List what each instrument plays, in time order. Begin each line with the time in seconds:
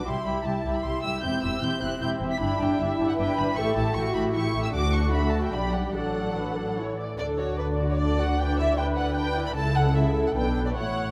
0.06 double bass section C2, viola section G3 E4, cello section E4, violin section G4 E5 C6
0.25 double bass section C2, viola section G3 E4, violin section G4 E5 B5
0.45 double bass section C2, viola section G3 E4, violin section G4 E5 A5
0.65 double bass section C2, viola section G3 E4, violin section G4 E5
0.75 violin section B5
0.85 double bass section C2, viola section G3 E4, violin section G4 E5 C6
1.04 double bass section C2, viola section G3 E4, violin section G4 E5 E6
1.23 double bass section E1, viola section C4 E4, cello section C4, violin section G4 E5 G6
1.43 double bass section E1, viola section C4 E4, violin section G4 E5 E6
1.62 double bass section E1, viola section C4 E4, violin section G4 E5 G6
1.82 double bass section E1, viola section C4 E4, violin section G4 E5 F#6
2.01 double bass section E1, viola section C4 E4, violin section G4 E5 G6
2.20 double bass section E1, viola section C4 E4, violin section G4 E5
2.32 violin section B6
2.40 double bass section G1, viola section D4 E4, cello section D4, violin section G4 E5 B5
2.59 double bass section G1, viola section D4 E4, violin section G4 E5 G5
2.79 double bass section G1, viola section D4 E4, cello section E4, violin section G4 E5
2.98 double bass section G1, viola section D4 E4, violin section G4 E5
3.09 violin section F#5
3.18 double bass section G1, viola section D4 E4, violin section G4 E5 G5, cello section B4
3.37 double bass section G1, viola section D4 E4, violin section G4 E5 B5
3.56 double bass section A1, viola section A3 E4, violin section G4 E5 C#6, cello section A4
3.76 double bass section A1, viola section A3 E4, violin section G4 E5 A5
3.95 double bass section A1, viola section A3 E4, cello section F#4, violin section G4 E5 C#6
4.15 double bass section A1, viola section A3 E4, violin section G4 E5 B5
4.35 double bass section A1, viola section A3 E4, cello section E4, violin section G4 E5 C#6
4.54 double bass section A1, viola section A3 E4, violin section G4 E5
4.64 violin section E6
4.73 double bass section D2, viola section A3 D4, cello section D4, violin section F#4 F#5 D6
4.93 violin section C#6
5.13 cello section F#4, violin section E5 B5
5.33 violin section A5
5.44 violin section G5
5.53 double bass section B1, viola section G3 D4, cello section G4, violin section G4 D5 B5
5.73 violin section F#5
5.85 violin section G5
5.94 double bass section A1, viola section F#3 D4, cello section A4, violin section A4 D5 F#5
6.36 violin section B4
6.58 violin section A4
6.78 viola section E3 E4, violin section C#5
6.99 violin section D5
7.19 double bass section D2, cello section D3, violin section D4 A4 D5, viola section A4
7.38 violin section F#4 C#5 D5
7.59 violin section D4 A4 B4, viola section D5
7.79 violin section F#4 D5
7.90 violin section C#5
7.99 violin section D4 A4 D5
8.19 violin section F#4 D5 F#5
8.39 violin section D4 B4 G5
8.59 violin section E4 D5 E5
8.77 violin section D4 B4 G5, viola section B4
8.97 violin section E4 D5 F#5
9.16 violin section D4 B4 G5
9.36 violin section E4 D5
9.47 violin section B5
9.56 double bass section C#2, cello section C#3, violin section E4 A4 A5, viola section A4
9.76 violin section F#5
9.95 violin section E4 A4 E5
10.27 violin section F#5
10.35 double bass section B1, cello section B2, violin section D4 B4 G5
10.56 violin section G5
10.67 violin section D5
10.75 double bass section A1, cello section A2, violin section E4 C#5 F#5, viola section C#5